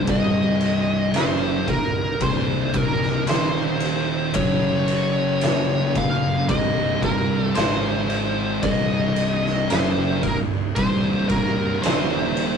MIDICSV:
0, 0, Header, 1, 5, 480
1, 0, Start_track
1, 0, Tempo, 1069519
1, 37, Time_signature, 4, 2, 24, 8
1, 5643, End_track
2, 0, Start_track
2, 0, Title_t, "Lead electric guitar"
2, 0, Program_c, 0, 29
2, 45, Note_on_c, 0, 75, 95
2, 521, Note_on_c, 0, 72, 90
2, 534, Note_off_c, 0, 75, 0
2, 759, Note_off_c, 0, 72, 0
2, 761, Note_on_c, 0, 70, 81
2, 1000, Note_off_c, 0, 70, 0
2, 1002, Note_on_c, 0, 72, 103
2, 1243, Note_off_c, 0, 72, 0
2, 1244, Note_on_c, 0, 70, 93
2, 1473, Note_off_c, 0, 70, 0
2, 1474, Note_on_c, 0, 72, 97
2, 1949, Note_off_c, 0, 72, 0
2, 1950, Note_on_c, 0, 73, 101
2, 2681, Note_on_c, 0, 77, 93
2, 2694, Note_off_c, 0, 73, 0
2, 2913, Note_off_c, 0, 77, 0
2, 2915, Note_on_c, 0, 75, 103
2, 3138, Note_off_c, 0, 75, 0
2, 3153, Note_on_c, 0, 70, 93
2, 3333, Note_off_c, 0, 70, 0
2, 3333, Note_on_c, 0, 69, 93
2, 3389, Note_off_c, 0, 69, 0
2, 3390, Note_on_c, 0, 72, 84
2, 3871, Note_on_c, 0, 75, 98
2, 3887, Note_off_c, 0, 72, 0
2, 4354, Note_on_c, 0, 72, 90
2, 4367, Note_off_c, 0, 75, 0
2, 4589, Note_off_c, 0, 72, 0
2, 4591, Note_on_c, 0, 70, 79
2, 4656, Note_off_c, 0, 70, 0
2, 4826, Note_on_c, 0, 72, 94
2, 5065, Note_off_c, 0, 72, 0
2, 5066, Note_on_c, 0, 70, 92
2, 5307, Note_off_c, 0, 70, 0
2, 5309, Note_on_c, 0, 72, 96
2, 5643, Note_off_c, 0, 72, 0
2, 5643, End_track
3, 0, Start_track
3, 0, Title_t, "Distorted electric guitar"
3, 0, Program_c, 1, 30
3, 34, Note_on_c, 1, 36, 86
3, 38, Note_on_c, 1, 43, 85
3, 40, Note_on_c, 1, 48, 88
3, 507, Note_off_c, 1, 36, 0
3, 509, Note_off_c, 1, 43, 0
3, 510, Note_off_c, 1, 48, 0
3, 514, Note_on_c, 1, 42, 87
3, 517, Note_on_c, 1, 49, 85
3, 520, Note_on_c, 1, 54, 93
3, 747, Note_off_c, 1, 42, 0
3, 748, Note_off_c, 1, 49, 0
3, 750, Note_off_c, 1, 54, 0
3, 756, Note_on_c, 1, 36, 60
3, 759, Note_on_c, 1, 43, 74
3, 947, Note_off_c, 1, 36, 0
3, 949, Note_off_c, 1, 43, 0
3, 988, Note_on_c, 1, 36, 81
3, 993, Note_on_c, 1, 43, 92
3, 994, Note_on_c, 1, 48, 87
3, 1464, Note_off_c, 1, 36, 0
3, 1466, Note_off_c, 1, 43, 0
3, 1467, Note_off_c, 1, 48, 0
3, 1474, Note_on_c, 1, 39, 85
3, 1480, Note_on_c, 1, 46, 97
3, 1482, Note_on_c, 1, 51, 106
3, 1947, Note_off_c, 1, 39, 0
3, 1950, Note_off_c, 1, 46, 0
3, 1951, Note_off_c, 1, 51, 0
3, 1952, Note_on_c, 1, 42, 83
3, 1957, Note_on_c, 1, 49, 97
3, 1958, Note_on_c, 1, 54, 82
3, 2906, Note_off_c, 1, 42, 0
3, 2908, Note_off_c, 1, 49, 0
3, 2909, Note_off_c, 1, 54, 0
3, 2911, Note_on_c, 1, 36, 94
3, 2914, Note_on_c, 1, 43, 103
3, 2918, Note_on_c, 1, 48, 95
3, 3385, Note_off_c, 1, 36, 0
3, 3387, Note_off_c, 1, 43, 0
3, 3389, Note_off_c, 1, 48, 0
3, 3392, Note_on_c, 1, 44, 100
3, 3392, Note_on_c, 1, 51, 111
3, 3396, Note_on_c, 1, 56, 106
3, 3866, Note_off_c, 1, 44, 0
3, 3866, Note_off_c, 1, 51, 0
3, 3868, Note_off_c, 1, 56, 0
3, 3873, Note_on_c, 1, 36, 83
3, 3878, Note_on_c, 1, 43, 100
3, 3880, Note_on_c, 1, 48, 96
3, 4346, Note_off_c, 1, 36, 0
3, 4349, Note_off_c, 1, 43, 0
3, 4350, Note_off_c, 1, 48, 0
3, 4351, Note_on_c, 1, 42, 90
3, 4354, Note_on_c, 1, 49, 86
3, 4357, Note_on_c, 1, 54, 104
3, 4585, Note_off_c, 1, 42, 0
3, 4587, Note_off_c, 1, 49, 0
3, 4588, Note_off_c, 1, 54, 0
3, 4590, Note_on_c, 1, 36, 67
3, 4593, Note_on_c, 1, 43, 67
3, 4784, Note_off_c, 1, 36, 0
3, 4785, Note_off_c, 1, 43, 0
3, 4831, Note_on_c, 1, 36, 81
3, 4835, Note_on_c, 1, 43, 102
3, 4837, Note_on_c, 1, 48, 108
3, 5305, Note_off_c, 1, 36, 0
3, 5307, Note_off_c, 1, 43, 0
3, 5308, Note_off_c, 1, 48, 0
3, 5310, Note_on_c, 1, 39, 92
3, 5312, Note_on_c, 1, 46, 99
3, 5316, Note_on_c, 1, 51, 105
3, 5643, Note_off_c, 1, 39, 0
3, 5643, Note_off_c, 1, 46, 0
3, 5643, Note_off_c, 1, 51, 0
3, 5643, End_track
4, 0, Start_track
4, 0, Title_t, "Fingered electric bass"
4, 0, Program_c, 2, 33
4, 33, Note_on_c, 2, 24, 96
4, 496, Note_off_c, 2, 24, 0
4, 515, Note_on_c, 2, 30, 93
4, 738, Note_off_c, 2, 30, 0
4, 755, Note_on_c, 2, 24, 83
4, 978, Note_off_c, 2, 24, 0
4, 990, Note_on_c, 2, 24, 77
4, 1454, Note_off_c, 2, 24, 0
4, 1469, Note_on_c, 2, 27, 94
4, 1933, Note_off_c, 2, 27, 0
4, 1950, Note_on_c, 2, 30, 98
4, 2894, Note_off_c, 2, 30, 0
4, 2914, Note_on_c, 2, 24, 78
4, 3376, Note_off_c, 2, 24, 0
4, 3391, Note_on_c, 2, 32, 92
4, 3855, Note_off_c, 2, 32, 0
4, 3872, Note_on_c, 2, 24, 95
4, 4335, Note_off_c, 2, 24, 0
4, 4356, Note_on_c, 2, 30, 90
4, 4578, Note_off_c, 2, 30, 0
4, 4593, Note_on_c, 2, 24, 82
4, 4817, Note_off_c, 2, 24, 0
4, 4832, Note_on_c, 2, 24, 89
4, 5295, Note_off_c, 2, 24, 0
4, 5308, Note_on_c, 2, 27, 93
4, 5643, Note_off_c, 2, 27, 0
4, 5643, End_track
5, 0, Start_track
5, 0, Title_t, "Drums"
5, 33, Note_on_c, 9, 51, 89
5, 34, Note_on_c, 9, 36, 116
5, 77, Note_off_c, 9, 51, 0
5, 79, Note_off_c, 9, 36, 0
5, 272, Note_on_c, 9, 51, 65
5, 317, Note_off_c, 9, 51, 0
5, 511, Note_on_c, 9, 51, 86
5, 522, Note_on_c, 9, 38, 101
5, 556, Note_off_c, 9, 51, 0
5, 566, Note_off_c, 9, 38, 0
5, 753, Note_on_c, 9, 36, 90
5, 754, Note_on_c, 9, 51, 67
5, 798, Note_off_c, 9, 36, 0
5, 799, Note_off_c, 9, 51, 0
5, 990, Note_on_c, 9, 51, 92
5, 992, Note_on_c, 9, 36, 96
5, 1035, Note_off_c, 9, 51, 0
5, 1037, Note_off_c, 9, 36, 0
5, 1228, Note_on_c, 9, 51, 69
5, 1231, Note_on_c, 9, 36, 90
5, 1273, Note_off_c, 9, 51, 0
5, 1276, Note_off_c, 9, 36, 0
5, 1360, Note_on_c, 9, 38, 30
5, 1405, Note_off_c, 9, 38, 0
5, 1468, Note_on_c, 9, 51, 89
5, 1479, Note_on_c, 9, 38, 109
5, 1513, Note_off_c, 9, 51, 0
5, 1523, Note_off_c, 9, 38, 0
5, 1707, Note_on_c, 9, 51, 70
5, 1752, Note_off_c, 9, 51, 0
5, 1947, Note_on_c, 9, 51, 100
5, 1951, Note_on_c, 9, 36, 117
5, 1992, Note_off_c, 9, 51, 0
5, 1996, Note_off_c, 9, 36, 0
5, 2189, Note_on_c, 9, 51, 68
5, 2234, Note_off_c, 9, 51, 0
5, 2430, Note_on_c, 9, 51, 88
5, 2440, Note_on_c, 9, 38, 107
5, 2475, Note_off_c, 9, 51, 0
5, 2485, Note_off_c, 9, 38, 0
5, 2672, Note_on_c, 9, 51, 74
5, 2673, Note_on_c, 9, 36, 85
5, 2717, Note_off_c, 9, 51, 0
5, 2718, Note_off_c, 9, 36, 0
5, 2912, Note_on_c, 9, 51, 83
5, 2913, Note_on_c, 9, 36, 106
5, 2957, Note_off_c, 9, 51, 0
5, 2958, Note_off_c, 9, 36, 0
5, 3153, Note_on_c, 9, 36, 80
5, 3153, Note_on_c, 9, 51, 65
5, 3198, Note_off_c, 9, 36, 0
5, 3198, Note_off_c, 9, 51, 0
5, 3389, Note_on_c, 9, 51, 89
5, 3400, Note_on_c, 9, 38, 114
5, 3434, Note_off_c, 9, 51, 0
5, 3445, Note_off_c, 9, 38, 0
5, 3634, Note_on_c, 9, 51, 60
5, 3679, Note_off_c, 9, 51, 0
5, 3872, Note_on_c, 9, 51, 97
5, 3873, Note_on_c, 9, 36, 120
5, 3916, Note_off_c, 9, 51, 0
5, 3918, Note_off_c, 9, 36, 0
5, 4112, Note_on_c, 9, 51, 66
5, 4157, Note_off_c, 9, 51, 0
5, 4246, Note_on_c, 9, 38, 32
5, 4291, Note_off_c, 9, 38, 0
5, 4354, Note_on_c, 9, 51, 94
5, 4364, Note_on_c, 9, 38, 112
5, 4399, Note_off_c, 9, 51, 0
5, 4409, Note_off_c, 9, 38, 0
5, 4591, Note_on_c, 9, 51, 69
5, 4592, Note_on_c, 9, 36, 83
5, 4636, Note_off_c, 9, 51, 0
5, 4637, Note_off_c, 9, 36, 0
5, 4830, Note_on_c, 9, 51, 80
5, 4832, Note_on_c, 9, 36, 102
5, 4875, Note_off_c, 9, 51, 0
5, 4877, Note_off_c, 9, 36, 0
5, 5069, Note_on_c, 9, 51, 70
5, 5071, Note_on_c, 9, 36, 89
5, 5114, Note_off_c, 9, 51, 0
5, 5116, Note_off_c, 9, 36, 0
5, 5311, Note_on_c, 9, 51, 94
5, 5322, Note_on_c, 9, 38, 124
5, 5356, Note_off_c, 9, 51, 0
5, 5367, Note_off_c, 9, 38, 0
5, 5551, Note_on_c, 9, 51, 64
5, 5596, Note_off_c, 9, 51, 0
5, 5643, End_track
0, 0, End_of_file